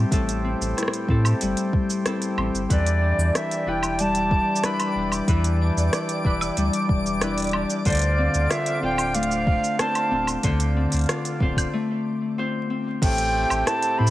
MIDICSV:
0, 0, Header, 1, 7, 480
1, 0, Start_track
1, 0, Key_signature, 0, "minor"
1, 0, Tempo, 645161
1, 89, Time_signature, 4, 2, 24, 8
1, 10491, End_track
2, 0, Start_track
2, 0, Title_t, "Synth texture"
2, 0, Program_c, 0, 99
2, 2017, Note_on_c, 0, 74, 87
2, 2019, Note_on_c, 0, 86, 87
2, 8733, Note_off_c, 0, 74, 0
2, 8734, Note_off_c, 0, 86, 0
2, 10491, End_track
3, 0, Start_track
3, 0, Title_t, "Flute"
3, 0, Program_c, 1, 73
3, 2021, Note_on_c, 1, 74, 89
3, 2500, Note_on_c, 1, 76, 77
3, 2511, Note_off_c, 1, 74, 0
3, 2743, Note_on_c, 1, 79, 82
3, 2754, Note_off_c, 1, 76, 0
3, 2983, Note_on_c, 1, 81, 96
3, 2994, Note_off_c, 1, 79, 0
3, 3459, Note_on_c, 1, 83, 90
3, 3470, Note_off_c, 1, 81, 0
3, 3814, Note_off_c, 1, 83, 0
3, 5854, Note_on_c, 1, 74, 88
3, 6325, Note_on_c, 1, 76, 91
3, 6337, Note_off_c, 1, 74, 0
3, 6567, Note_off_c, 1, 76, 0
3, 6573, Note_on_c, 1, 79, 87
3, 6806, Note_on_c, 1, 77, 100
3, 6817, Note_off_c, 1, 79, 0
3, 7286, Note_on_c, 1, 81, 91
3, 7297, Note_off_c, 1, 77, 0
3, 7647, Note_off_c, 1, 81, 0
3, 9700, Note_on_c, 1, 79, 89
3, 10171, Note_on_c, 1, 81, 92
3, 10183, Note_off_c, 1, 79, 0
3, 10402, Note_on_c, 1, 83, 103
3, 10414, Note_off_c, 1, 81, 0
3, 10491, Note_off_c, 1, 83, 0
3, 10491, End_track
4, 0, Start_track
4, 0, Title_t, "Harp"
4, 0, Program_c, 2, 46
4, 0, Note_on_c, 2, 45, 84
4, 0, Note_on_c, 2, 55, 64
4, 0, Note_on_c, 2, 60, 56
4, 0, Note_on_c, 2, 64, 59
4, 0, Note_on_c, 2, 69, 65
4, 83, Note_off_c, 2, 45, 0
4, 92, Note_on_c, 2, 45, 83
4, 94, Note_off_c, 2, 69, 0
4, 97, Note_on_c, 2, 69, 70
4, 328, Note_off_c, 2, 60, 0
4, 331, Note_on_c, 2, 60, 61
4, 569, Note_off_c, 2, 64, 0
4, 572, Note_on_c, 2, 64, 58
4, 811, Note_off_c, 2, 60, 0
4, 813, Note_off_c, 2, 64, 0
4, 814, Note_on_c, 2, 60, 56
4, 816, Note_on_c, 2, 64, 54
4, 818, Note_off_c, 2, 69, 0
4, 821, Note_on_c, 2, 69, 66
4, 1049, Note_off_c, 2, 55, 0
4, 1052, Note_on_c, 2, 55, 67
4, 1528, Note_off_c, 2, 60, 0
4, 1531, Note_on_c, 2, 60, 58
4, 1532, Note_off_c, 2, 64, 0
4, 1535, Note_on_c, 2, 64, 58
4, 1537, Note_off_c, 2, 69, 0
4, 1539, Note_on_c, 2, 69, 60
4, 1765, Note_off_c, 2, 60, 0
4, 1768, Note_on_c, 2, 60, 61
4, 2008, Note_on_c, 2, 52, 75
4, 2012, Note_on_c, 2, 71, 68
4, 2046, Note_off_c, 2, 45, 0
4, 2246, Note_on_c, 2, 62, 58
4, 2487, Note_off_c, 2, 64, 0
4, 2490, Note_on_c, 2, 64, 56
4, 2727, Note_off_c, 2, 62, 0
4, 2730, Note_on_c, 2, 62, 59
4, 2731, Note_off_c, 2, 64, 0
4, 2734, Note_on_c, 2, 64, 59
4, 2737, Note_off_c, 2, 71, 0
4, 2739, Note_on_c, 2, 71, 64
4, 2784, Note_off_c, 2, 60, 0
4, 2970, Note_off_c, 2, 55, 0
4, 2973, Note_on_c, 2, 55, 63
4, 3173, Note_off_c, 2, 69, 0
4, 3449, Note_off_c, 2, 62, 0
4, 3452, Note_on_c, 2, 62, 56
4, 3454, Note_off_c, 2, 64, 0
4, 3457, Note_on_c, 2, 64, 60
4, 3458, Note_off_c, 2, 71, 0
4, 3461, Note_on_c, 2, 71, 65
4, 3688, Note_off_c, 2, 62, 0
4, 3691, Note_on_c, 2, 62, 63
4, 3923, Note_off_c, 2, 52, 0
4, 3932, Note_on_c, 2, 52, 88
4, 3934, Note_off_c, 2, 71, 0
4, 3937, Note_on_c, 2, 71, 69
4, 4172, Note_off_c, 2, 62, 0
4, 4175, Note_on_c, 2, 62, 61
4, 4406, Note_off_c, 2, 64, 0
4, 4409, Note_on_c, 2, 64, 59
4, 4646, Note_off_c, 2, 62, 0
4, 4649, Note_on_c, 2, 62, 58
4, 4651, Note_off_c, 2, 64, 0
4, 4654, Note_on_c, 2, 64, 58
4, 4655, Note_off_c, 2, 71, 0
4, 4658, Note_on_c, 2, 71, 61
4, 4880, Note_off_c, 2, 55, 0
4, 4889, Note_on_c, 2, 55, 68
4, 5368, Note_off_c, 2, 62, 0
4, 5371, Note_on_c, 2, 62, 64
4, 5372, Note_off_c, 2, 64, 0
4, 5375, Note_on_c, 2, 64, 61
4, 5376, Note_off_c, 2, 71, 0
4, 5379, Note_on_c, 2, 71, 67
4, 5608, Note_off_c, 2, 62, 0
4, 5611, Note_on_c, 2, 62, 59
4, 5845, Note_on_c, 2, 50, 90
4, 5850, Note_on_c, 2, 72, 75
4, 5886, Note_off_c, 2, 52, 0
4, 5886, Note_off_c, 2, 55, 0
4, 5894, Note_off_c, 2, 71, 0
4, 6086, Note_on_c, 2, 60, 65
4, 6323, Note_on_c, 2, 65, 62
4, 6367, Note_off_c, 2, 64, 0
4, 6563, Note_off_c, 2, 60, 0
4, 6566, Note_off_c, 2, 65, 0
4, 6566, Note_on_c, 2, 60, 59
4, 6569, Note_on_c, 2, 65, 60
4, 6571, Note_off_c, 2, 72, 0
4, 6574, Note_on_c, 2, 72, 62
4, 6805, Note_on_c, 2, 57, 67
4, 7282, Note_off_c, 2, 60, 0
4, 7285, Note_on_c, 2, 60, 63
4, 7290, Note_off_c, 2, 65, 0
4, 7293, Note_off_c, 2, 72, 0
4, 7293, Note_on_c, 2, 65, 61
4, 7296, Note_on_c, 2, 72, 71
4, 7518, Note_off_c, 2, 60, 0
4, 7521, Note_on_c, 2, 60, 67
4, 7756, Note_off_c, 2, 50, 0
4, 7765, Note_on_c, 2, 50, 89
4, 7766, Note_off_c, 2, 72, 0
4, 7769, Note_on_c, 2, 72, 67
4, 8006, Note_off_c, 2, 60, 0
4, 8009, Note_on_c, 2, 60, 63
4, 8249, Note_off_c, 2, 65, 0
4, 8252, Note_on_c, 2, 65, 61
4, 8487, Note_off_c, 2, 60, 0
4, 8490, Note_on_c, 2, 60, 60
4, 8491, Note_off_c, 2, 65, 0
4, 8494, Note_on_c, 2, 65, 62
4, 8495, Note_off_c, 2, 72, 0
4, 8498, Note_on_c, 2, 72, 68
4, 8726, Note_off_c, 2, 57, 0
4, 8729, Note_on_c, 2, 57, 73
4, 9151, Note_off_c, 2, 62, 0
4, 9208, Note_off_c, 2, 60, 0
4, 9210, Note_off_c, 2, 65, 0
4, 9211, Note_on_c, 2, 60, 65
4, 9213, Note_on_c, 2, 65, 61
4, 9215, Note_off_c, 2, 72, 0
4, 9218, Note_on_c, 2, 72, 73
4, 9446, Note_off_c, 2, 60, 0
4, 9449, Note_on_c, 2, 60, 59
4, 9686, Note_on_c, 2, 45, 85
4, 9726, Note_off_c, 2, 50, 0
4, 10162, Note_on_c, 2, 64, 59
4, 10206, Note_off_c, 2, 65, 0
4, 10402, Note_off_c, 2, 60, 0
4, 10405, Note_on_c, 2, 60, 58
4, 10491, Note_off_c, 2, 45, 0
4, 10491, Note_off_c, 2, 57, 0
4, 10491, Note_off_c, 2, 60, 0
4, 10491, Note_off_c, 2, 64, 0
4, 10491, Note_off_c, 2, 72, 0
4, 10491, End_track
5, 0, Start_track
5, 0, Title_t, "Accordion"
5, 0, Program_c, 3, 21
5, 0, Note_on_c, 3, 57, 68
5, 0, Note_on_c, 3, 60, 65
5, 0, Note_on_c, 3, 67, 76
5, 1980, Note_off_c, 3, 60, 0
5, 1981, Note_off_c, 3, 57, 0
5, 2012, Note_on_c, 3, 62, 68
5, 2013, Note_on_c, 3, 52, 73
5, 5819, Note_off_c, 3, 67, 0
5, 5821, Note_off_c, 3, 52, 0
5, 5821, Note_off_c, 3, 62, 0
5, 5846, Note_on_c, 3, 65, 79
5, 5847, Note_on_c, 3, 50, 74
5, 5850, Note_on_c, 3, 60, 69
5, 7750, Note_off_c, 3, 60, 0
5, 7771, Note_on_c, 3, 62, 64
5, 8699, Note_off_c, 3, 50, 0
5, 8699, Note_off_c, 3, 65, 0
5, 8720, Note_off_c, 3, 62, 0
5, 9688, Note_on_c, 3, 57, 76
5, 9692, Note_on_c, 3, 67, 91
5, 9693, Note_on_c, 3, 60, 71
5, 10491, Note_off_c, 3, 57, 0
5, 10491, Note_off_c, 3, 60, 0
5, 10491, Note_off_c, 3, 67, 0
5, 10491, End_track
6, 0, Start_track
6, 0, Title_t, "Sub bass"
6, 0, Program_c, 4, 38
6, 87, Note_on_c, 4, 33, 93
6, 406, Note_off_c, 4, 33, 0
6, 452, Note_on_c, 4, 33, 96
6, 544, Note_off_c, 4, 33, 0
6, 805, Note_on_c, 4, 45, 95
6, 994, Note_off_c, 4, 45, 0
6, 1057, Note_on_c, 4, 31, 79
6, 1147, Note_off_c, 4, 31, 0
6, 1765, Note_on_c, 4, 33, 88
6, 1860, Note_off_c, 4, 33, 0
6, 1887, Note_on_c, 4, 31, 90
6, 1981, Note_off_c, 4, 31, 0
6, 2008, Note_on_c, 4, 40, 91
6, 2326, Note_off_c, 4, 40, 0
6, 2363, Note_on_c, 4, 40, 92
6, 2459, Note_off_c, 4, 40, 0
6, 2725, Note_on_c, 4, 28, 91
6, 3285, Note_off_c, 4, 28, 0
6, 3685, Note_on_c, 4, 28, 96
6, 3874, Note_off_c, 4, 28, 0
6, 3926, Note_on_c, 4, 40, 96
6, 4245, Note_off_c, 4, 40, 0
6, 4290, Note_on_c, 4, 40, 95
6, 4383, Note_off_c, 4, 40, 0
6, 4648, Note_on_c, 4, 28, 103
6, 4835, Note_off_c, 4, 28, 0
6, 4888, Note_on_c, 4, 38, 81
6, 4982, Note_off_c, 4, 38, 0
6, 5129, Note_on_c, 4, 28, 76
6, 5687, Note_off_c, 4, 28, 0
6, 5843, Note_on_c, 4, 38, 98
6, 6164, Note_off_c, 4, 38, 0
6, 6208, Note_on_c, 4, 38, 93
6, 6302, Note_off_c, 4, 38, 0
6, 6565, Note_on_c, 4, 26, 102
6, 7125, Note_off_c, 4, 26, 0
6, 7523, Note_on_c, 4, 26, 103
6, 7713, Note_off_c, 4, 26, 0
6, 7763, Note_on_c, 4, 38, 94
6, 8084, Note_off_c, 4, 38, 0
6, 8132, Note_on_c, 4, 38, 94
6, 8224, Note_off_c, 4, 38, 0
6, 8485, Note_on_c, 4, 26, 103
6, 8674, Note_off_c, 4, 26, 0
6, 9686, Note_on_c, 4, 33, 91
6, 10005, Note_off_c, 4, 33, 0
6, 10047, Note_on_c, 4, 33, 97
6, 10141, Note_off_c, 4, 33, 0
6, 10414, Note_on_c, 4, 45, 102
6, 10491, Note_off_c, 4, 45, 0
6, 10491, End_track
7, 0, Start_track
7, 0, Title_t, "Drums"
7, 86, Note_on_c, 9, 36, 113
7, 90, Note_on_c, 9, 42, 59
7, 95, Note_on_c, 9, 69, 50
7, 161, Note_off_c, 9, 36, 0
7, 164, Note_off_c, 9, 42, 0
7, 169, Note_off_c, 9, 69, 0
7, 214, Note_on_c, 9, 42, 39
7, 219, Note_on_c, 9, 69, 32
7, 289, Note_off_c, 9, 42, 0
7, 294, Note_off_c, 9, 69, 0
7, 460, Note_on_c, 9, 69, 64
7, 534, Note_off_c, 9, 69, 0
7, 580, Note_on_c, 9, 37, 42
7, 580, Note_on_c, 9, 42, 54
7, 585, Note_on_c, 9, 69, 51
7, 615, Note_off_c, 9, 37, 0
7, 615, Note_on_c, 9, 37, 51
7, 653, Note_off_c, 9, 37, 0
7, 653, Note_on_c, 9, 37, 69
7, 654, Note_off_c, 9, 42, 0
7, 659, Note_off_c, 9, 69, 0
7, 695, Note_on_c, 9, 42, 39
7, 700, Note_on_c, 9, 69, 32
7, 728, Note_off_c, 9, 37, 0
7, 770, Note_off_c, 9, 42, 0
7, 775, Note_off_c, 9, 69, 0
7, 807, Note_on_c, 9, 36, 98
7, 881, Note_off_c, 9, 36, 0
7, 929, Note_on_c, 9, 77, 69
7, 934, Note_on_c, 9, 69, 63
7, 1004, Note_off_c, 9, 77, 0
7, 1009, Note_off_c, 9, 69, 0
7, 1049, Note_on_c, 9, 42, 55
7, 1054, Note_on_c, 9, 69, 53
7, 1123, Note_off_c, 9, 42, 0
7, 1128, Note_off_c, 9, 69, 0
7, 1168, Note_on_c, 9, 42, 39
7, 1174, Note_on_c, 9, 69, 31
7, 1243, Note_off_c, 9, 42, 0
7, 1248, Note_off_c, 9, 69, 0
7, 1288, Note_on_c, 9, 36, 92
7, 1363, Note_off_c, 9, 36, 0
7, 1414, Note_on_c, 9, 69, 60
7, 1488, Note_off_c, 9, 69, 0
7, 1530, Note_on_c, 9, 37, 87
7, 1530, Note_on_c, 9, 42, 54
7, 1535, Note_on_c, 9, 69, 51
7, 1605, Note_off_c, 9, 37, 0
7, 1605, Note_off_c, 9, 42, 0
7, 1610, Note_off_c, 9, 69, 0
7, 1650, Note_on_c, 9, 42, 39
7, 1655, Note_on_c, 9, 69, 32
7, 1724, Note_off_c, 9, 42, 0
7, 1729, Note_off_c, 9, 69, 0
7, 1770, Note_on_c, 9, 77, 70
7, 1844, Note_off_c, 9, 77, 0
7, 1898, Note_on_c, 9, 69, 64
7, 1972, Note_off_c, 9, 69, 0
7, 2009, Note_on_c, 9, 36, 104
7, 2012, Note_on_c, 9, 42, 55
7, 2017, Note_on_c, 9, 69, 53
7, 2083, Note_off_c, 9, 36, 0
7, 2086, Note_off_c, 9, 42, 0
7, 2091, Note_off_c, 9, 69, 0
7, 2131, Note_on_c, 9, 42, 38
7, 2136, Note_on_c, 9, 69, 30
7, 2206, Note_off_c, 9, 42, 0
7, 2211, Note_off_c, 9, 69, 0
7, 2376, Note_on_c, 9, 69, 60
7, 2450, Note_off_c, 9, 69, 0
7, 2494, Note_on_c, 9, 37, 84
7, 2494, Note_on_c, 9, 42, 57
7, 2499, Note_on_c, 9, 69, 50
7, 2568, Note_off_c, 9, 37, 0
7, 2568, Note_off_c, 9, 42, 0
7, 2573, Note_off_c, 9, 69, 0
7, 2615, Note_on_c, 9, 42, 36
7, 2620, Note_on_c, 9, 69, 29
7, 2689, Note_off_c, 9, 42, 0
7, 2694, Note_off_c, 9, 69, 0
7, 2848, Note_on_c, 9, 77, 74
7, 2853, Note_on_c, 9, 69, 62
7, 2922, Note_off_c, 9, 77, 0
7, 2927, Note_off_c, 9, 69, 0
7, 2967, Note_on_c, 9, 42, 56
7, 2972, Note_on_c, 9, 69, 51
7, 3041, Note_off_c, 9, 42, 0
7, 3046, Note_off_c, 9, 69, 0
7, 3086, Note_on_c, 9, 42, 40
7, 3092, Note_on_c, 9, 69, 29
7, 3161, Note_off_c, 9, 42, 0
7, 3166, Note_off_c, 9, 69, 0
7, 3207, Note_on_c, 9, 36, 95
7, 3281, Note_off_c, 9, 36, 0
7, 3392, Note_on_c, 9, 69, 61
7, 3448, Note_on_c, 9, 37, 86
7, 3448, Note_on_c, 9, 42, 60
7, 3453, Note_off_c, 9, 69, 0
7, 3453, Note_on_c, 9, 69, 52
7, 3523, Note_off_c, 9, 37, 0
7, 3523, Note_off_c, 9, 42, 0
7, 3528, Note_off_c, 9, 69, 0
7, 3568, Note_on_c, 9, 42, 39
7, 3568, Note_on_c, 9, 77, 67
7, 3573, Note_on_c, 9, 69, 30
7, 3643, Note_off_c, 9, 42, 0
7, 3643, Note_off_c, 9, 77, 0
7, 3648, Note_off_c, 9, 69, 0
7, 3807, Note_on_c, 9, 77, 56
7, 3813, Note_on_c, 9, 69, 59
7, 3882, Note_off_c, 9, 77, 0
7, 3887, Note_off_c, 9, 69, 0
7, 3927, Note_on_c, 9, 36, 108
7, 3929, Note_on_c, 9, 42, 64
7, 3934, Note_on_c, 9, 69, 53
7, 4001, Note_off_c, 9, 36, 0
7, 4003, Note_off_c, 9, 42, 0
7, 4008, Note_off_c, 9, 69, 0
7, 4050, Note_on_c, 9, 42, 39
7, 4055, Note_on_c, 9, 69, 29
7, 4125, Note_off_c, 9, 42, 0
7, 4130, Note_off_c, 9, 69, 0
7, 4298, Note_on_c, 9, 69, 64
7, 4373, Note_off_c, 9, 69, 0
7, 4411, Note_on_c, 9, 37, 84
7, 4411, Note_on_c, 9, 42, 64
7, 4416, Note_on_c, 9, 69, 48
7, 4485, Note_off_c, 9, 37, 0
7, 4485, Note_off_c, 9, 42, 0
7, 4490, Note_off_c, 9, 69, 0
7, 4530, Note_on_c, 9, 42, 40
7, 4535, Note_on_c, 9, 69, 27
7, 4605, Note_off_c, 9, 42, 0
7, 4610, Note_off_c, 9, 69, 0
7, 4647, Note_on_c, 9, 36, 94
7, 4722, Note_off_c, 9, 36, 0
7, 4770, Note_on_c, 9, 77, 76
7, 4775, Note_on_c, 9, 69, 62
7, 4845, Note_off_c, 9, 77, 0
7, 4850, Note_off_c, 9, 69, 0
7, 4888, Note_on_c, 9, 42, 54
7, 4893, Note_on_c, 9, 69, 47
7, 4962, Note_off_c, 9, 42, 0
7, 4968, Note_off_c, 9, 69, 0
7, 5010, Note_on_c, 9, 42, 41
7, 5016, Note_on_c, 9, 69, 28
7, 5085, Note_off_c, 9, 42, 0
7, 5090, Note_off_c, 9, 69, 0
7, 5127, Note_on_c, 9, 36, 91
7, 5202, Note_off_c, 9, 36, 0
7, 5254, Note_on_c, 9, 69, 57
7, 5329, Note_off_c, 9, 69, 0
7, 5368, Note_on_c, 9, 37, 85
7, 5368, Note_on_c, 9, 42, 59
7, 5373, Note_on_c, 9, 69, 48
7, 5442, Note_off_c, 9, 37, 0
7, 5442, Note_off_c, 9, 42, 0
7, 5447, Note_off_c, 9, 69, 0
7, 5488, Note_on_c, 9, 42, 39
7, 5493, Note_on_c, 9, 69, 29
7, 5505, Note_off_c, 9, 42, 0
7, 5505, Note_on_c, 9, 42, 31
7, 5523, Note_off_c, 9, 42, 0
7, 5523, Note_on_c, 9, 42, 26
7, 5538, Note_off_c, 9, 42, 0
7, 5538, Note_on_c, 9, 42, 20
7, 5558, Note_off_c, 9, 42, 0
7, 5558, Note_on_c, 9, 42, 18
7, 5568, Note_off_c, 9, 69, 0
7, 5574, Note_off_c, 9, 42, 0
7, 5574, Note_on_c, 9, 42, 15
7, 5590, Note_off_c, 9, 42, 0
7, 5590, Note_on_c, 9, 42, 12
7, 5605, Note_on_c, 9, 77, 80
7, 5665, Note_off_c, 9, 42, 0
7, 5679, Note_off_c, 9, 77, 0
7, 5729, Note_on_c, 9, 69, 65
7, 5804, Note_off_c, 9, 69, 0
7, 5843, Note_on_c, 9, 42, 29
7, 5846, Note_on_c, 9, 36, 104
7, 5848, Note_on_c, 9, 69, 50
7, 5861, Note_off_c, 9, 42, 0
7, 5861, Note_on_c, 9, 42, 35
7, 5879, Note_off_c, 9, 42, 0
7, 5879, Note_on_c, 9, 42, 39
7, 5896, Note_off_c, 9, 42, 0
7, 5896, Note_on_c, 9, 42, 41
7, 5913, Note_off_c, 9, 42, 0
7, 5913, Note_on_c, 9, 42, 47
7, 5920, Note_off_c, 9, 36, 0
7, 5922, Note_off_c, 9, 69, 0
7, 5929, Note_off_c, 9, 42, 0
7, 5929, Note_on_c, 9, 42, 47
7, 5946, Note_off_c, 9, 42, 0
7, 5946, Note_on_c, 9, 42, 53
7, 5963, Note_off_c, 9, 42, 0
7, 5963, Note_on_c, 9, 42, 40
7, 5968, Note_on_c, 9, 69, 28
7, 6038, Note_off_c, 9, 42, 0
7, 6043, Note_off_c, 9, 69, 0
7, 6208, Note_on_c, 9, 69, 62
7, 6282, Note_off_c, 9, 69, 0
7, 6328, Note_on_c, 9, 37, 85
7, 6328, Note_on_c, 9, 42, 62
7, 6333, Note_on_c, 9, 69, 46
7, 6402, Note_off_c, 9, 37, 0
7, 6402, Note_off_c, 9, 42, 0
7, 6408, Note_off_c, 9, 69, 0
7, 6445, Note_on_c, 9, 42, 42
7, 6450, Note_on_c, 9, 69, 30
7, 6519, Note_off_c, 9, 42, 0
7, 6524, Note_off_c, 9, 69, 0
7, 6682, Note_on_c, 9, 77, 77
7, 6688, Note_on_c, 9, 69, 59
7, 6757, Note_off_c, 9, 77, 0
7, 6762, Note_off_c, 9, 69, 0
7, 6804, Note_on_c, 9, 42, 61
7, 6809, Note_on_c, 9, 69, 47
7, 6866, Note_off_c, 9, 42, 0
7, 6866, Note_on_c, 9, 42, 42
7, 6884, Note_off_c, 9, 69, 0
7, 6930, Note_on_c, 9, 69, 31
7, 6940, Note_off_c, 9, 42, 0
7, 7004, Note_off_c, 9, 69, 0
7, 7045, Note_on_c, 9, 36, 93
7, 7120, Note_off_c, 9, 36, 0
7, 7173, Note_on_c, 9, 69, 58
7, 7248, Note_off_c, 9, 69, 0
7, 7285, Note_on_c, 9, 37, 98
7, 7285, Note_on_c, 9, 42, 63
7, 7290, Note_on_c, 9, 69, 53
7, 7360, Note_off_c, 9, 37, 0
7, 7360, Note_off_c, 9, 42, 0
7, 7365, Note_off_c, 9, 69, 0
7, 7405, Note_on_c, 9, 42, 42
7, 7405, Note_on_c, 9, 77, 76
7, 7410, Note_on_c, 9, 69, 30
7, 7479, Note_off_c, 9, 42, 0
7, 7479, Note_off_c, 9, 77, 0
7, 7484, Note_off_c, 9, 69, 0
7, 7643, Note_on_c, 9, 77, 61
7, 7648, Note_on_c, 9, 69, 59
7, 7718, Note_off_c, 9, 77, 0
7, 7723, Note_off_c, 9, 69, 0
7, 7763, Note_on_c, 9, 42, 65
7, 7765, Note_on_c, 9, 36, 99
7, 7768, Note_on_c, 9, 69, 50
7, 7837, Note_off_c, 9, 42, 0
7, 7839, Note_off_c, 9, 36, 0
7, 7842, Note_off_c, 9, 69, 0
7, 7886, Note_on_c, 9, 42, 44
7, 7891, Note_on_c, 9, 69, 32
7, 7960, Note_off_c, 9, 42, 0
7, 7965, Note_off_c, 9, 69, 0
7, 8124, Note_on_c, 9, 42, 29
7, 8129, Note_on_c, 9, 69, 58
7, 8143, Note_off_c, 9, 42, 0
7, 8143, Note_on_c, 9, 42, 22
7, 8159, Note_off_c, 9, 42, 0
7, 8159, Note_on_c, 9, 42, 20
7, 8178, Note_off_c, 9, 42, 0
7, 8178, Note_on_c, 9, 42, 17
7, 8194, Note_off_c, 9, 42, 0
7, 8194, Note_on_c, 9, 42, 14
7, 8204, Note_off_c, 9, 69, 0
7, 8212, Note_off_c, 9, 42, 0
7, 8212, Note_on_c, 9, 42, 11
7, 8228, Note_off_c, 9, 42, 0
7, 8228, Note_on_c, 9, 42, 8
7, 8251, Note_off_c, 9, 42, 0
7, 8251, Note_on_c, 9, 37, 95
7, 8251, Note_on_c, 9, 42, 64
7, 8256, Note_on_c, 9, 69, 48
7, 8326, Note_off_c, 9, 37, 0
7, 8326, Note_off_c, 9, 42, 0
7, 8331, Note_off_c, 9, 69, 0
7, 8371, Note_on_c, 9, 42, 42
7, 8376, Note_on_c, 9, 69, 29
7, 8445, Note_off_c, 9, 42, 0
7, 8450, Note_off_c, 9, 69, 0
7, 8484, Note_on_c, 9, 36, 96
7, 8559, Note_off_c, 9, 36, 0
7, 8605, Note_on_c, 9, 36, 56
7, 8615, Note_on_c, 9, 42, 32
7, 8615, Note_on_c, 9, 77, 82
7, 8620, Note_on_c, 9, 69, 59
7, 8679, Note_off_c, 9, 36, 0
7, 8689, Note_off_c, 9, 42, 0
7, 8689, Note_off_c, 9, 77, 0
7, 8694, Note_off_c, 9, 69, 0
7, 9686, Note_on_c, 9, 36, 113
7, 9691, Note_on_c, 9, 42, 67
7, 9691, Note_on_c, 9, 49, 99
7, 9696, Note_on_c, 9, 69, 55
7, 9760, Note_off_c, 9, 36, 0
7, 9765, Note_off_c, 9, 42, 0
7, 9765, Note_off_c, 9, 49, 0
7, 9771, Note_off_c, 9, 69, 0
7, 9808, Note_on_c, 9, 42, 47
7, 9813, Note_on_c, 9, 69, 32
7, 9882, Note_off_c, 9, 42, 0
7, 9887, Note_off_c, 9, 69, 0
7, 10046, Note_on_c, 9, 77, 78
7, 10051, Note_on_c, 9, 69, 65
7, 10121, Note_off_c, 9, 77, 0
7, 10126, Note_off_c, 9, 69, 0
7, 10170, Note_on_c, 9, 37, 91
7, 10170, Note_on_c, 9, 42, 62
7, 10176, Note_on_c, 9, 69, 54
7, 10245, Note_off_c, 9, 37, 0
7, 10245, Note_off_c, 9, 42, 0
7, 10250, Note_off_c, 9, 69, 0
7, 10286, Note_on_c, 9, 42, 43
7, 10291, Note_on_c, 9, 69, 31
7, 10360, Note_off_c, 9, 42, 0
7, 10365, Note_off_c, 9, 69, 0
7, 10491, End_track
0, 0, End_of_file